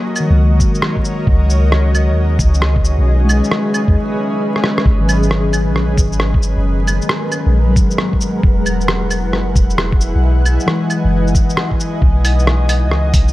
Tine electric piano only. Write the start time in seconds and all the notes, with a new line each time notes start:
Already playing: A#3
0.20 D#3
0.25 F#3
0.30 G#3
3.24 G#3
5.00 D#3
5.05 F#3
7.69 F#3
10.66 E3
10.71 G#3